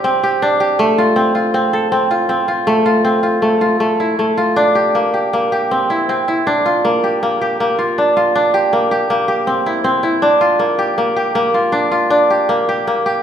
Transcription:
Already playing: D4 F4 G4
0.04 C4
0.23 G4
0.42 D4
0.60 G4
0.79 A3
0.98 F4
1.16 C4
1.35 F4
1.54 C4
1.73 A4
1.92 C4
2.11 F4
2.29 C4
2.48 F4
2.67 A3
2.86 F4
3.05 C4
3.23 F4
3.42 A3
3.61 F4
3.80 A3
4.00 E4
4.19 A3
4.37 F4
4.56 D4
4.75 G4
4.95 A#3
5.14 G4
5.33 A#3
5.52 G4
5.71 C4
5.90 E4
6.09 C4
6.28 E4
6.47 D4
6.66 F4
6.85 A#3
7.04 G4
7.23 A#3
7.41 G4
7.60 A#3
7.79 F4
7.98 D4
8.17 F4
8.35 D4
8.54 G4
8.73 A#3
8.91 G4
9.10 A#3
9.28 G4
9.47 C4
9.66 E4
9.84 C4
10.03 E4
10.22 D4
10.41 F4
10.59 A#3
10.79 G4
10.98 A#3
11.16 G4
11.35 A#3
11.54 F4
11.72 D4
11.92 F4
12.10 D4
12.30 G4
12.49 A#3
12.69 G4
12.87 A#3
13.06 G4

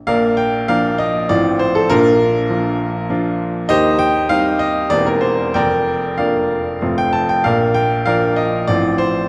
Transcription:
0.07 A#1 A#2 A#4 D5 F5
0.37 G5
0.68 F3 A#3 D4 A#4 D5 F5
0.98 D#5
1.29 A1 A2 F3 C4 F4 D5
1.59 C5
1.75 A4
1.89 A#1 A#2 D4 F4 A#4
2.50 F3 D4 F4
3.10 F3 D4 F4
3.69 D#2 D#3 G4 C5 D#5
3.99 G5
4.29 G3 C4 D#4 F5
4.59 D#5
4.90 E1 E2 A#3 C4 G4 D5
5.06 A#4
5.21 C5
5.54 F1 F2 A#4 D5 G5
6.18 A#3 D4 F4 A#4 D5 F5
6.82 F1 F2 A3 C4 F4
6.98 G5
7.13 A5
7.29 G5
7.44 A#1 A#2 A#4 D5 F5
7.74 G5
8.06 F3 D4 F4 A#4 D5 F5
8.36 D#5
8.67 A1 A2 F3 C4 F4 D5
8.98 C5

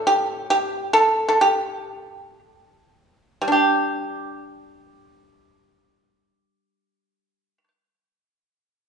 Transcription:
Already playing: A2 D3
0.07 G4
0.50 G4
0.93 A4
1.29 A4
1.41 G4
3.42 G3
3.48 D4
3.52 G4

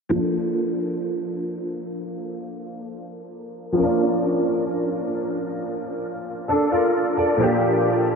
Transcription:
0.09 F3 A#3 D4
0.15 A4
3.72 F3 A#3 C#4
3.78 A#4
3.83 D4
6.48 D4 A4
6.71 F4 A#4
7.17 A4 D5
7.37 A#2 F3 A#3
7.41 D4 G4

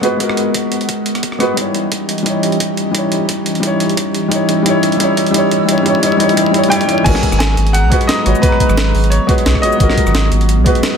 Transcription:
Already playing: G#3 B3 F#4 A#4 B4 F#5
0.00 G#3 B3 F#4, closed hi-hat
0.05 B4
0.17 G#3 B3, kick, closed hi-hat
0.21 F#4 A#4
0.29 cross-stick
0.37 closed hi-hat
0.54 kick, closed hi-hat
0.72 closed hi-hat
0.81 closed hi-hat
0.89 kick, closed hi-hat
1.06 closed hi-hat
1.15 cross-stick, closed hi-hat
1.23 kick, closed hi-hat
1.32 cross-stick
1.39 G#3 B3 F#4 B4, cross-stick, closed hi-hat
1.54 E3 G3 C#4 D#4 G4 D#5, kick, closed hi-hat
1.59 E4 C#5
1.75 closed hi-hat
1.92 kick, closed hi-hat
2.09 closed hi-hat
2.18 closed hi-hat
2.23 G3 D#4, kick, closed hi-hat
2.27 E4 C#5
2.43 closed hi-hat
2.52 closed hi-hat
2.60 kick, closed hi-hat
2.77 closed hi-hat
2.91 G3 D#4, kick, closed hi-hat
2.96 E4 C#5
3.12 closed hi-hat
3.29 kick, closed hi-hat
3.46 closed hi-hat
3.55 closed hi-hat
3.60 G3 D#4, kick, closed hi-hat
3.65 E4 C#5
3.80 closed hi-hat
3.89 closed hi-hat
3.97 kick, closed hi-hat
4.14 closed hi-hat
4.28 G3 D#4 E6, kick, closed hi-hat
4.33 E4 C#5
4.49 kick, closed hi-hat
4.63 G3 D#4, kick, closed hi-hat
4.67 E4 C#5
4.83 kick, closed hi-hat
4.92 closed hi-hat
4.97 G3 D#4, kick, closed hi-hat
5.01 E4 C#5
5.17 kick, closed hi-hat
5.26 closed hi-hat
5.31 G3 D#4, kick, closed hi-hat
5.36 E4 C#5
5.51 kick, closed hi-hat
5.65 G3 D#4, kick, closed hi-hat
5.70 E4 C#5
5.78 kick
5.83 G3 D#4, kick, closed hi-hat
5.87 E4 C#5
5.95 kick
6.00 G3 D#4, kick, closed hi-hat
6.04 E4 C#5
6.12 kick
6.17 G3 D#4, kick, closed hi-hat
6.21 E4 C#5
6.29 kick, closed hi-hat
6.34 G3 D#4, kick, closed hi-hat
6.39 E4 C#5
6.46 kick
6.51 G3 D#4, kick, closed hi-hat
6.56 E4 C#5
6.64 kick, closed hi-hat
6.68 G3 D#4 G5, kick, closed hi-hat
6.73 E4 C#5
6.81 kick, closed hi-hat
6.85 G3 D#4, kick, closed hi-hat
6.90 E4 C#5
6.98 kick
7.02 G#1 F#3 G#3 B3 G#4 G#5 A#5, kick, closed hi-hat, crash, shaker
7.07 F#4 A#4
7.15 cross-stick, snare
7.23 kick, closed hi-hat, shaker
7.32 G#1, cross-stick, shaker
7.39 G#5, snare, closed hi-hat, shaker
7.57 G#1, closed hi-hat, shaker
7.67 closed hi-hat
7.73 F#5, closed hi-hat, shaker
7.84 B1
7.90 G#3 B3 F#4 B4, kick, closed hi-hat
8.01 closed hi-hat
8.07 D#5, snare, closed hi-hat, shaker
8.24 G#1 G#3 B3 F#4 C#5, cross-stick, closed hi-hat, shaker
8.35 shaker
8.39 G#3 B3 B4, kick, closed hi-hat, shaker
8.44 F#4 A#5
8.52 cross-stick
8.60 kick, closed hi-hat, shaker
8.70 G#1, cross-stick, shaker
8.78 snare, closed hi-hat, shaker
8.95 G#1, open hi-hat, shaker
9.04 closed hi-hat
9.10 C#5, closed hi-hat, shaker
9.27 G#3 B3 F#4 B4, kick, closed hi-hat
9.38 closed hi-hat
9.46 B1, snare, closed hi-hat, shaker
9.55 kick, cross-stick
9.61 G#3 B3 F#4 C#5 D#5, closed hi-hat, shaker
9.72 shaker
9.77 G#1 G#3 B3, kick, closed hi-hat, shaker
9.81 F#4 A#4
9.90 cross-stick, snare
9.97 kick, closed hi-hat, shaker
10.07 G#1, cross-stick, shaker
10.15 snare, closed hi-hat, shaker
10.32 G#1, closed hi-hat, shaker
10.41 closed hi-hat
10.49 closed hi-hat, shaker
10.58 B1
10.64 G#3 B3 F#4 B4, kick, closed hi-hat
10.75 closed hi-hat
10.83 snare, closed hi-hat, shaker

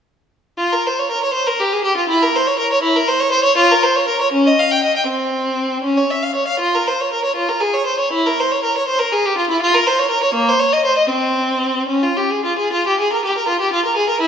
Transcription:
0.58 F4
0.73 A#4
0.86 C5
0.99 C#5
1.11 A#4
1.23 C#5
1.33 C5
1.47 A#4
1.60 G4
1.72 G#4
1.84 G4
1.97 F4
2.09 E4
2.22 A#4
2.35 C5
2.47 C#5
2.59 A#4
2.72 C#5
2.83 E4
2.96 A#4
3.08 C5
3.20 C#5
3.32 C5
3.44 C#5
3.57 F4
3.71 A#4
3.83 C5
3.96 C#5
4.08 A#4
4.21 C#5
4.32 C#4
4.46 D#5
4.59 F5
4.71 G5
4.83 D#5
4.97 G5
5.07 C4
5.84 C#4
5.97 C#5
6.10 E5
6.22 F5
6.35 C#5
6.48 F5
6.60 F4
6.74 A#4
6.87 C5
7.00 C#5
7.13 A#4
7.25 C#5
7.36 F4
7.49 A#4
7.60 G#4
7.73 C#5
7.86 C5
7.99 C#5
8.12 E4
8.26 A#4
8.40 C5
8.52 C#5
8.64 A#4
8.77 C#5
8.88 C5
8.99 A#4
9.12 G#4
9.25 G4
9.37 F4
9.50 E4
9.62 F4
9.74 A#4
9.87 C5
9.98 C#5
10.11 A#4
10.23 C#5
10.34 A#3
10.48 C5
10.60 C#5
10.73 D#5
10.85 C5
10.98 D#5
11.10 C4
11.88 C#4
12.03 F4
12.16 G4
12.30 G#4
12.45 F4
12.58 G#4
12.73 F4
12.87 G4
13.00 G#4
13.13 A#4
13.25 G4
13.37 A#4
13.48 F4
13.60 G4
13.73 F4
13.85 A#4
13.97 G#4
14.09 A#4
14.21 E4

